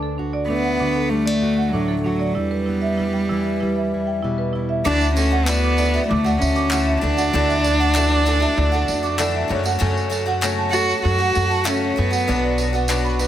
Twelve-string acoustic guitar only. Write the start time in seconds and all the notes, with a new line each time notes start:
4.85 D3 E3 A3 D4 F#4
5.16 E3 A3 D4 F#4
5.30 A3 D4 F#4
5.47 D3 E3 A3 D4 F#4
5.77 E3 A3 D4 F#4
5.94 A3 D4 F#4
6.24 A3 D4 F#4
6.55 A3 D4 F#4
6.71 D3 E3 A3 F#4
7.01 E3 A3 D4 F#4
7.18 A3 D4 F#4
7.33 D3 E3 A3 D4 F#4
7.64 E3 A3 D4 F#4
7.80 A3 D4 F#4
7.96 D3 E3 A3 D4 F#4
8.26 E3 A3 D4 F#4
8.40 A3 D4 F#4
8.72 A3 D4 F#4
9.03 A3 D4 F#4
9.18 D3 E3 A3 D4 F#4
9.48 F#3 A3 C#4 F#4
9.64 F#3 A3 C#4 F#4
9.79 F#2 C#3 F#3 A3 C#4 F#4
10.10 F#3 A3 C#4 F#4
10.26 F#3 A3 C#4 F#4
10.41 F#2 C#3 F#3 A3 C#4 F#4
10.72 F#3 A3 C#4
11.18 F#3 A3 C#4 F#4
11.49 F#3 A3 C#4 F#4
11.64 F#2 C#3 F#3 A3 C#4 F#4
11.96 F#3 A3 C#4 F#4
12.10 F#3 A3 C#4 F#4
12.28 B2 F#3 B3 D4 F#4
12.58 F#3 B3 D4 F#4
12.73 B3 D4 F#4
12.89 B2 F#3 B3 D4 F#4
13.19 F#3 B3 D4 F#4